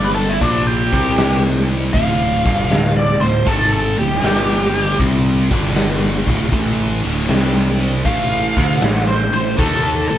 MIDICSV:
0, 0, Header, 1, 5, 480
1, 0, Start_track
1, 0, Tempo, 765306
1, 1213, Time_signature, 4, 2, 24, 8
1, 6386, End_track
2, 0, Start_track
2, 0, Title_t, "Lead electric guitar"
2, 0, Program_c, 0, 29
2, 28, Note_on_c, 0, 71, 92
2, 59, Note_off_c, 0, 71, 0
2, 94, Note_on_c, 0, 69, 82
2, 182, Note_on_c, 0, 64, 80
2, 199, Note_off_c, 0, 69, 0
2, 259, Note_off_c, 0, 64, 0
2, 259, Note_on_c, 0, 62, 90
2, 412, Note_off_c, 0, 62, 0
2, 421, Note_on_c, 0, 67, 99
2, 882, Note_off_c, 0, 67, 0
2, 1212, Note_on_c, 0, 77, 106
2, 1832, Note_off_c, 0, 77, 0
2, 1860, Note_on_c, 0, 74, 95
2, 2011, Note_off_c, 0, 74, 0
2, 2014, Note_on_c, 0, 72, 88
2, 2168, Note_off_c, 0, 72, 0
2, 2175, Note_on_c, 0, 69, 77
2, 2328, Note_off_c, 0, 69, 0
2, 2336, Note_on_c, 0, 69, 91
2, 2489, Note_off_c, 0, 69, 0
2, 2501, Note_on_c, 0, 67, 96
2, 3117, Note_off_c, 0, 67, 0
2, 5052, Note_on_c, 0, 77, 94
2, 5675, Note_off_c, 0, 77, 0
2, 5694, Note_on_c, 0, 72, 89
2, 5848, Note_off_c, 0, 72, 0
2, 5856, Note_on_c, 0, 72, 79
2, 6005, Note_off_c, 0, 72, 0
2, 6007, Note_on_c, 0, 69, 75
2, 6160, Note_off_c, 0, 69, 0
2, 6168, Note_on_c, 0, 69, 88
2, 6316, Note_off_c, 0, 69, 0
2, 6324, Note_on_c, 0, 69, 88
2, 6386, Note_off_c, 0, 69, 0
2, 6386, End_track
3, 0, Start_track
3, 0, Title_t, "Distorted electric guitar"
3, 0, Program_c, 1, 30
3, 0, Note_on_c, 1, 43, 85
3, 0, Note_on_c, 1, 50, 92
3, 0, Note_on_c, 1, 55, 99
3, 253, Note_off_c, 1, 43, 0
3, 255, Note_on_c, 1, 46, 88
3, 256, Note_off_c, 1, 50, 0
3, 258, Note_off_c, 1, 55, 0
3, 263, Note_on_c, 1, 53, 86
3, 263, Note_on_c, 1, 58, 95
3, 569, Note_off_c, 1, 46, 0
3, 573, Note_off_c, 1, 53, 0
3, 573, Note_off_c, 1, 58, 0
3, 575, Note_on_c, 1, 48, 81
3, 578, Note_on_c, 1, 55, 76
3, 582, Note_on_c, 1, 60, 93
3, 1207, Note_off_c, 1, 48, 0
3, 1208, Note_off_c, 1, 55, 0
3, 1210, Note_off_c, 1, 60, 0
3, 1213, Note_on_c, 1, 38, 87
3, 1219, Note_on_c, 1, 45, 87
3, 1225, Note_on_c, 1, 50, 107
3, 1527, Note_off_c, 1, 38, 0
3, 1529, Note_off_c, 1, 45, 0
3, 1531, Note_off_c, 1, 50, 0
3, 1536, Note_on_c, 1, 43, 90
3, 1538, Note_on_c, 1, 50, 97
3, 1543, Note_on_c, 1, 55, 92
3, 1686, Note_off_c, 1, 43, 0
3, 1688, Note_off_c, 1, 50, 0
3, 1689, Note_on_c, 1, 38, 67
3, 1691, Note_off_c, 1, 55, 0
3, 1693, Note_on_c, 1, 45, 65
3, 1949, Note_off_c, 1, 38, 0
3, 1951, Note_off_c, 1, 45, 0
3, 2012, Note_on_c, 1, 38, 62
3, 2013, Note_on_c, 1, 45, 65
3, 2139, Note_off_c, 1, 38, 0
3, 2139, Note_off_c, 1, 45, 0
3, 2162, Note_on_c, 1, 44, 87
3, 2169, Note_on_c, 1, 51, 89
3, 2172, Note_on_c, 1, 56, 93
3, 2481, Note_off_c, 1, 44, 0
3, 2484, Note_off_c, 1, 51, 0
3, 2486, Note_off_c, 1, 56, 0
3, 2492, Note_on_c, 1, 38, 59
3, 2492, Note_on_c, 1, 45, 61
3, 2618, Note_off_c, 1, 38, 0
3, 2618, Note_off_c, 1, 45, 0
3, 2643, Note_on_c, 1, 43, 95
3, 2646, Note_on_c, 1, 50, 96
3, 2651, Note_on_c, 1, 55, 97
3, 3122, Note_off_c, 1, 43, 0
3, 3124, Note_off_c, 1, 50, 0
3, 3126, Note_off_c, 1, 55, 0
3, 3126, Note_on_c, 1, 48, 95
3, 3133, Note_on_c, 1, 55, 93
3, 3138, Note_on_c, 1, 60, 106
3, 3443, Note_off_c, 1, 48, 0
3, 3447, Note_off_c, 1, 55, 0
3, 3448, Note_on_c, 1, 43, 81
3, 3449, Note_off_c, 1, 60, 0
3, 3453, Note_on_c, 1, 50, 88
3, 3455, Note_on_c, 1, 55, 91
3, 3922, Note_off_c, 1, 43, 0
3, 3925, Note_off_c, 1, 50, 0
3, 3926, Note_off_c, 1, 55, 0
3, 3926, Note_on_c, 1, 38, 79
3, 3931, Note_on_c, 1, 45, 95
3, 3935, Note_on_c, 1, 50, 95
3, 4073, Note_off_c, 1, 45, 0
3, 4078, Note_off_c, 1, 38, 0
3, 4081, Note_on_c, 1, 45, 83
3, 4085, Note_on_c, 1, 52, 94
3, 4087, Note_off_c, 1, 50, 0
3, 4090, Note_on_c, 1, 57, 90
3, 4401, Note_off_c, 1, 45, 0
3, 4403, Note_off_c, 1, 52, 0
3, 4406, Note_off_c, 1, 57, 0
3, 4409, Note_on_c, 1, 38, 87
3, 4416, Note_on_c, 1, 45, 85
3, 4418, Note_on_c, 1, 50, 89
3, 4562, Note_off_c, 1, 38, 0
3, 4564, Note_on_c, 1, 48, 75
3, 4568, Note_off_c, 1, 45, 0
3, 4569, Note_off_c, 1, 50, 0
3, 4573, Note_on_c, 1, 55, 92
3, 4576, Note_on_c, 1, 60, 86
3, 5045, Note_off_c, 1, 48, 0
3, 5048, Note_on_c, 1, 45, 85
3, 5049, Note_off_c, 1, 55, 0
3, 5051, Note_off_c, 1, 60, 0
3, 5055, Note_on_c, 1, 52, 94
3, 5058, Note_on_c, 1, 57, 101
3, 5366, Note_off_c, 1, 45, 0
3, 5368, Note_off_c, 1, 52, 0
3, 5368, Note_off_c, 1, 57, 0
3, 5371, Note_on_c, 1, 50, 78
3, 5376, Note_on_c, 1, 57, 96
3, 5382, Note_on_c, 1, 62, 99
3, 5526, Note_off_c, 1, 50, 0
3, 5529, Note_off_c, 1, 57, 0
3, 5529, Note_on_c, 1, 45, 62
3, 5531, Note_on_c, 1, 52, 64
3, 5532, Note_off_c, 1, 62, 0
3, 5791, Note_off_c, 1, 45, 0
3, 5793, Note_off_c, 1, 52, 0
3, 5849, Note_on_c, 1, 45, 64
3, 5852, Note_on_c, 1, 52, 68
3, 5979, Note_off_c, 1, 45, 0
3, 5981, Note_off_c, 1, 52, 0
3, 6004, Note_on_c, 1, 51, 85
3, 6006, Note_on_c, 1, 58, 88
3, 6011, Note_on_c, 1, 63, 89
3, 6325, Note_off_c, 1, 51, 0
3, 6326, Note_off_c, 1, 58, 0
3, 6328, Note_off_c, 1, 63, 0
3, 6332, Note_on_c, 1, 45, 61
3, 6336, Note_on_c, 1, 52, 63
3, 6386, Note_off_c, 1, 45, 0
3, 6386, Note_off_c, 1, 52, 0
3, 6386, End_track
4, 0, Start_track
4, 0, Title_t, "Picked electric bass"
4, 0, Program_c, 2, 34
4, 0, Note_on_c, 2, 31, 88
4, 235, Note_off_c, 2, 31, 0
4, 261, Note_on_c, 2, 34, 79
4, 559, Note_off_c, 2, 34, 0
4, 584, Note_on_c, 2, 36, 83
4, 1190, Note_off_c, 2, 36, 0
4, 1218, Note_on_c, 2, 26, 82
4, 1517, Note_off_c, 2, 26, 0
4, 1543, Note_on_c, 2, 31, 95
4, 1685, Note_off_c, 2, 31, 0
4, 1698, Note_on_c, 2, 26, 73
4, 1996, Note_off_c, 2, 26, 0
4, 2021, Note_on_c, 2, 26, 72
4, 2163, Note_off_c, 2, 26, 0
4, 2176, Note_on_c, 2, 32, 84
4, 2475, Note_off_c, 2, 32, 0
4, 2502, Note_on_c, 2, 26, 74
4, 2644, Note_off_c, 2, 26, 0
4, 2659, Note_on_c, 2, 31, 82
4, 3110, Note_off_c, 2, 31, 0
4, 3134, Note_on_c, 2, 36, 85
4, 3434, Note_off_c, 2, 36, 0
4, 3456, Note_on_c, 2, 31, 92
4, 3911, Note_off_c, 2, 31, 0
4, 3937, Note_on_c, 2, 26, 87
4, 4082, Note_off_c, 2, 26, 0
4, 4090, Note_on_c, 2, 33, 80
4, 4393, Note_off_c, 2, 33, 0
4, 4422, Note_on_c, 2, 26, 85
4, 4565, Note_off_c, 2, 26, 0
4, 4577, Note_on_c, 2, 36, 84
4, 5031, Note_off_c, 2, 36, 0
4, 5053, Note_on_c, 2, 33, 91
4, 5355, Note_off_c, 2, 33, 0
4, 5376, Note_on_c, 2, 38, 94
4, 5523, Note_off_c, 2, 38, 0
4, 5536, Note_on_c, 2, 33, 73
4, 5837, Note_off_c, 2, 33, 0
4, 5860, Note_on_c, 2, 33, 74
4, 6005, Note_off_c, 2, 33, 0
4, 6012, Note_on_c, 2, 39, 85
4, 6316, Note_off_c, 2, 39, 0
4, 6341, Note_on_c, 2, 33, 68
4, 6386, Note_off_c, 2, 33, 0
4, 6386, End_track
5, 0, Start_track
5, 0, Title_t, "Drums"
5, 105, Note_on_c, 9, 42, 59
5, 168, Note_off_c, 9, 42, 0
5, 259, Note_on_c, 9, 36, 92
5, 261, Note_on_c, 9, 42, 80
5, 322, Note_off_c, 9, 36, 0
5, 323, Note_off_c, 9, 42, 0
5, 581, Note_on_c, 9, 36, 100
5, 583, Note_on_c, 9, 42, 63
5, 644, Note_off_c, 9, 36, 0
5, 646, Note_off_c, 9, 42, 0
5, 738, Note_on_c, 9, 42, 79
5, 743, Note_on_c, 9, 38, 103
5, 801, Note_off_c, 9, 42, 0
5, 806, Note_off_c, 9, 38, 0
5, 1062, Note_on_c, 9, 42, 58
5, 1124, Note_off_c, 9, 42, 0
5, 1217, Note_on_c, 9, 36, 97
5, 1220, Note_on_c, 9, 42, 71
5, 1280, Note_off_c, 9, 36, 0
5, 1283, Note_off_c, 9, 42, 0
5, 1541, Note_on_c, 9, 36, 96
5, 1543, Note_on_c, 9, 42, 59
5, 1604, Note_off_c, 9, 36, 0
5, 1605, Note_off_c, 9, 42, 0
5, 1698, Note_on_c, 9, 42, 74
5, 1703, Note_on_c, 9, 38, 99
5, 1760, Note_off_c, 9, 42, 0
5, 1765, Note_off_c, 9, 38, 0
5, 2021, Note_on_c, 9, 42, 54
5, 2084, Note_off_c, 9, 42, 0
5, 2175, Note_on_c, 9, 36, 97
5, 2176, Note_on_c, 9, 42, 74
5, 2238, Note_off_c, 9, 36, 0
5, 2238, Note_off_c, 9, 42, 0
5, 2501, Note_on_c, 9, 42, 63
5, 2564, Note_off_c, 9, 42, 0
5, 2585, Note_on_c, 9, 38, 31
5, 2647, Note_off_c, 9, 38, 0
5, 2657, Note_on_c, 9, 42, 80
5, 2662, Note_on_c, 9, 38, 109
5, 2720, Note_off_c, 9, 42, 0
5, 2725, Note_off_c, 9, 38, 0
5, 2981, Note_on_c, 9, 42, 53
5, 3043, Note_off_c, 9, 42, 0
5, 3133, Note_on_c, 9, 36, 88
5, 3133, Note_on_c, 9, 42, 80
5, 3196, Note_off_c, 9, 36, 0
5, 3196, Note_off_c, 9, 42, 0
5, 3455, Note_on_c, 9, 42, 67
5, 3456, Note_on_c, 9, 36, 101
5, 3518, Note_off_c, 9, 42, 0
5, 3519, Note_off_c, 9, 36, 0
5, 3539, Note_on_c, 9, 38, 29
5, 3601, Note_off_c, 9, 38, 0
5, 3610, Note_on_c, 9, 42, 81
5, 3615, Note_on_c, 9, 38, 95
5, 3673, Note_off_c, 9, 42, 0
5, 3678, Note_off_c, 9, 38, 0
5, 3932, Note_on_c, 9, 42, 60
5, 3934, Note_on_c, 9, 36, 96
5, 3994, Note_off_c, 9, 42, 0
5, 3997, Note_off_c, 9, 36, 0
5, 4089, Note_on_c, 9, 42, 76
5, 4090, Note_on_c, 9, 36, 102
5, 4151, Note_off_c, 9, 42, 0
5, 4153, Note_off_c, 9, 36, 0
5, 4413, Note_on_c, 9, 42, 62
5, 4476, Note_off_c, 9, 42, 0
5, 4568, Note_on_c, 9, 42, 85
5, 4573, Note_on_c, 9, 38, 100
5, 4630, Note_off_c, 9, 42, 0
5, 4635, Note_off_c, 9, 38, 0
5, 4895, Note_on_c, 9, 42, 62
5, 4958, Note_off_c, 9, 42, 0
5, 5049, Note_on_c, 9, 42, 79
5, 5050, Note_on_c, 9, 36, 88
5, 5111, Note_off_c, 9, 42, 0
5, 5113, Note_off_c, 9, 36, 0
5, 5374, Note_on_c, 9, 42, 55
5, 5375, Note_on_c, 9, 36, 104
5, 5437, Note_off_c, 9, 36, 0
5, 5437, Note_off_c, 9, 42, 0
5, 5529, Note_on_c, 9, 42, 76
5, 5534, Note_on_c, 9, 38, 99
5, 5592, Note_off_c, 9, 42, 0
5, 5597, Note_off_c, 9, 38, 0
5, 5855, Note_on_c, 9, 42, 57
5, 5918, Note_off_c, 9, 42, 0
5, 6012, Note_on_c, 9, 36, 105
5, 6015, Note_on_c, 9, 42, 73
5, 6075, Note_off_c, 9, 36, 0
5, 6078, Note_off_c, 9, 42, 0
5, 6337, Note_on_c, 9, 42, 60
5, 6386, Note_off_c, 9, 42, 0
5, 6386, End_track
0, 0, End_of_file